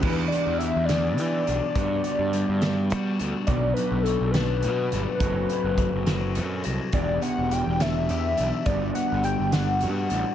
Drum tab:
CC |x-----|------|------|------|
HH |-xxxxx|xxxxxx|xxxxxx|xxxxxx|
SD |---o--|---o--|---o--|---o--|
BD |o-----|o-----|o-----|o-o---|

CC |------|------|
HH |xxxxxx|xxxxxx|
SD |---o--|---o--|
BD |o-----|o-----|